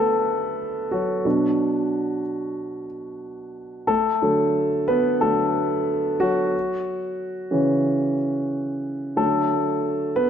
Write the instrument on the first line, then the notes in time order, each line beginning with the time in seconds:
grand piano
Already playing: D3 F#3 A3 B3 A4 B4
0.91 F#3 F#4
1.25 B2 F#3 D4
3.87 A3 A4
4.22 D3 F#3 A3
4.88 B3 B4
5.21 D3 F#3 A3 A4
6.20 F#3 F#4
7.51 C#3 E3 C#4
9.16 D3 F#3 A3 A4
10.16 B3 B4